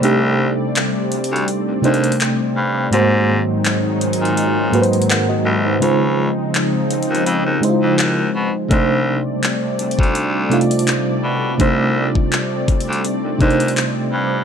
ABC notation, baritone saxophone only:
X:1
M:4/4
L:1/16
Q:"Swing 16ths" 1/4=83
K:Cdor
V:1 name="Baritone saxophone" clef=bass
C,,3 z3 D,, D,, z E,, E,,2 z2 G,,2 | _A,,3 z3 B,, B,,4 z3 C,,2 | _D,,3 z3 E,, E,, F,, E,, z F,, E,,2 =B,, z | C,,3 z3 D,, D,,4 z3 =B,,2 |
C,,3 z3 D,, D,, z E,, E,,2 z2 G,,2 |]